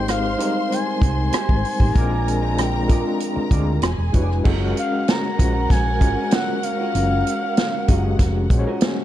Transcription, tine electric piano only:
0.00 0.38 G#3 medium
0.00 0.39 C4 medium
0.00 0.39 D#4 medium
0.00 1.98 G4 medium
0.00 0.40 A#4 medium
0.00 0.36 C5 medium
0.38 1.54 G3 medium
0.38 1.53 G#3 medium
0.38 1.54 C4 medium
0.38 1.54 D#4 medium
0.38 1.55 A#4 medium
1.95 2.38 G#3 medium
1.95 2.39 C4 medium
1.95 2.39 D4 medium
1.95 2.39 F4 medium
1.95 2.40 A#4 loud
2.41 2.85 G#3 medium
2.41 2.85 C4 medium
2.41 2.86 D4 medium
2.41 2.86 F4 medium
2.41 2.86 C5 medium
2.88 3.46 G#3 medium
2.88 3.46 C4 medium
2.88 3.47 D4 medium
2.88 3.47 F4 medium
2.88 3.47 G#4 medium
3.51 3.82 G#3 medium
3.51 3.83 C4 medium
3.51 3.83 D4 medium
3.51 3.83 F4 medium
3.51 3.84 A#4 medium
4.12 4.42 G#3 medium
4.12 4.42 D4 medium
4.12 4.43 E4 medium
4.12 4.43 F#4 medium
4.12 4.43 B4 medium
4.44 5.31 G#3 loud
4.44 5.31 C#4 medium
4.44 5.32 F#4 medium
4.44 4.52 A4 medium
4.53 5.35 A#4 loud
5.38 5.96 G#3 medium
5.38 5.96 C#4 medium
5.38 5.97 F#4 medium
5.38 5.97 C5 medium
6.00 7.15 G#3 medium
6.00 7.16 C#4 medium
6.00 7.16 F#4 medium
6.00 7.17 A#4 medium
7.88 8.46 G#3 medium
7.88 8.46 C#4 medium
7.88 8.47 F#4 medium
7.88 7.96 G4 medium
7.97 8.50 G#4 medium
8.50 9.04 G#3 medium
8.50 9.04 C#4 medium
8.50 9.04 F#4 medium
8.50 8.59 C5 medium
8.50 8.80 F#5 medium
8.59 9.04 C#5 medium
8.83 9.04 G#5 medium

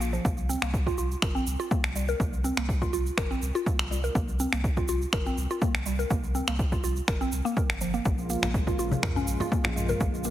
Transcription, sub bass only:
0.00 0.19 A#1 medium
0.25 0.56 C2 loud
0.62 0.92 C2 medium
0.98 1.15 C2 medium
1.22 1.39 G1 medium
1.47 1.56 C2 loud
1.84 2.14 C2 medium
2.20 2.51 C2 loud
2.57 2.87 C2 medium
2.93 3.10 C2 medium
3.17 3.35 G1 medium
3.42 3.51 C2 loud
3.79 4.09 C2 medium
4.15 4.46 C2 loud
4.53 4.83 C2 medium
4.89 5.05 C2 medium
5.13 5.30 G1 medium
5.37 5.46 C2 loud
5.75 6.05 C2 medium
6.11 6.41 C2 loud
6.48 6.78 C2 medium
6.83 7.00 C2 medium
7.08 7.25 G1 medium
7.32 7.41 C2 loud
7.69 7.99 G1 medium
8.05 8.36 A#1 loud
8.43 8.73 A#1 medium
8.78 8.96 A#1 medium
9.03 9.20 F2 medium
9.28 9.36 A#1 loud
9.65 9.95 A#1 medium
10.01 10.30 A#1 loud

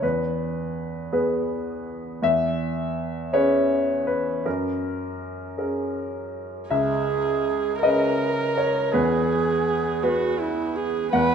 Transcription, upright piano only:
0.02 1.09 E2 soft
0.02 1.12 B4 soft
1.12 2.19 B3 soft
1.12 2.19 G#4 soft
1.12 2.19 B4 soft
2.22 3.29 E2 soft
2.22 3.29 E5 medium
3.33 4.41 C#4 soft
3.33 4.41 G#4 soft
3.33 4.05 B4 soft
3.33 4.04 C#5 medium
4.07 4.42 B4 soft
4.45 5.54 F#2 soft
4.45 5.57 A#4 soft
5.58 6.67 C#4 soft
5.58 6.67 G#4 soft
5.58 6.67 A#4 soft
6.70 7.80 C#2 soft
6.70 7.79 E5 medium
7.83 8.89 C#4 soft
7.83 8.89 G#4 soft
7.83 8.90 B4 soft
7.83 8.53 D#5 medium
8.57 8.91 C#5 soft
8.93 10.00 E2 soft
8.93 10.02 B4 medium
10.03 11.09 B3 soft
10.03 11.09 G#4 soft
10.03 11.09 B4 soft
11.13 11.35 E2 medium
11.13 11.35 F#5 medium

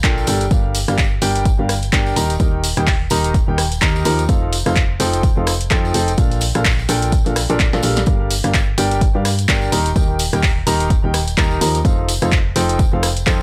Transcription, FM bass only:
0.04 0.25 A#1 medium
0.27 0.49 G1 medium
0.51 0.85 G1 loud
0.88 1.20 G1 medium
1.22 1.56 G1 medium
1.59 1.91 G1 medium
1.93 2.14 G1 medium
2.16 2.38 D#1 medium
2.40 2.74 D#1 medium
2.77 3.09 D#1 medium
3.11 3.45 D#1 medium
3.48 3.80 D#1 medium
3.82 4.03 D#2 loud
4.05 4.27 D#2 medium
4.29 4.63 F1 medium
4.66 4.98 F1 loud
5.00 5.34 F1 medium
5.37 5.69 F1 medium
5.71 5.92 F2 loud
5.94 6.16 F1 loud
6.18 6.52 A#1 loud
6.55 6.87 A#1 medium
6.89 7.23 A#1 medium
7.26 7.47 A#1 medium
7.50 7.71 A#1 loud
7.73 7.81 A#1 medium
7.83 8.05 A#1 loud
8.07 8.41 G1 loud
8.44 8.76 G1 loud
8.78 9.12 G1 medium
9.15 9.47 G2 medium
9.49 9.70 G1 loud
9.72 9.94 D#1 loud
9.96 10.30 D#1 loud
10.33 10.65 D#1 loud
10.67 11.01 D#1 medium
11.04 11.36 D#1 medium
11.38 11.59 D#1 loud
11.61 11.83 D#2 loud
11.85 12.19 F1 loud
12.22 12.54 F1 medium
12.56 12.90 F1 medium
12.93 13.25 F1 medium
13.27 13.42 F2 loud

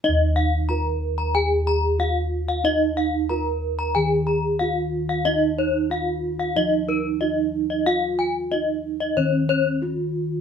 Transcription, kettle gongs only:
0.04 1.96 D#4 medium
0.09 3.93 D#2 medium
0.69 0.77 F4 soft
2.00 2.08 F4 soft
2.64 4.56 D#4 medium
3.31 3.39 F4 soft
3.96 5.87 D#3 medium
4.61 4.69 F4 soft
5.26 7.17 D#4 medium
5.91 5.99 F4 soft
6.57 8.48 F3 medium
7.21 7.29 F4 soft
7.87 8.51 F4 soft
8.52 8.60 F4 soft
9.17 10.41 D#3 medium
9.82 9.90 F4 soft

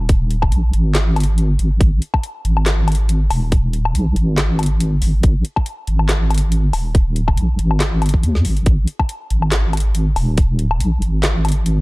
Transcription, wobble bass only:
0.00 0.51 D#1 loud
0.52 0.72 A#1 medium
0.73 1.58 G#1 loud
1.59 1.79 G#1 medium
1.81 2.01 G#1 loud
2.45 3.29 G#1 loud
3.31 3.94 D#1 loud
3.95 4.15 A#1 medium
4.17 5.01 G#1 loud
5.02 5.22 G#1 medium
5.24 5.43 G#1 loud
5.88 6.72 G#1 loud
7.38 7.58 A#1 medium
7.59 8.25 G#1 loud
8.23 8.47 D#2 loud
8.45 8.65 G#1 medium
8.66 8.86 G#1 loud
9.31 10.15 G#1 loud
10.17 10.79 D#1 loud
10.81 11.01 A#1 loud
11.02 11.81 G#1 loud

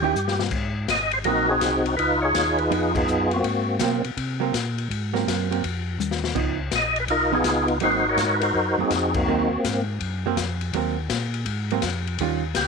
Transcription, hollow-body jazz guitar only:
0.02 0.14 D#3 medium
0.02 0.14 C#4 medium
0.02 0.15 E4 medium
0.02 0.15 G4 medium
1.25 1.47 F#3 medium
1.25 1.47 A#3 medium
1.25 1.47 C4 medium
2.71 2.92 F3 medium
2.71 2.92 B3 medium
2.71 2.93 D#4 medium
3.81 4.02 F#3 medium
3.81 4.02 A#3 medium
3.81 4.03 C4 medium
4.40 4.51 F#3 medium
4.40 4.52 A#3 medium
4.40 4.52 C4 medium
5.13 5.48 F#3 medium
5.13 5.48 A#3 medium
5.13 5.48 C4 medium
5.51 5.62 F#3 medium
5.51 5.62 A#3 medium
5.51 5.62 C4 medium
6.35 6.57 F3 medium
6.35 6.57 B3 medium
6.35 6.58 D#4 medium
7.32 7.43 F3 medium
7.32 7.43 B3 medium
7.32 7.44 D#4 medium
7.81 8.03 F#3 medium
7.81 8.03 A#3 medium
7.81 8.03 C4 medium
8.78 8.89 F#3 soft
8.78 8.90 A#3 medium
8.78 8.90 C4 medium
9.28 9.49 F#3 medium
9.28 9.49 A#3 medium
9.28 9.50 C4 medium
10.26 10.36 F#3 medium
10.26 10.37 A#3 medium
10.26 10.37 C4 medium
10.74 10.95 F#3 medium
10.74 10.96 A#3 medium
10.74 10.96 C4 medium
11.72 11.82 F#3 medium
11.72 11.82 A#3 medium
11.72 11.82 C4 medium
12.21 12.42 D#3 medium
12.21 12.42 G3 medium
12.21 12.42 C#4 medium
12.21 12.42 F4 medium

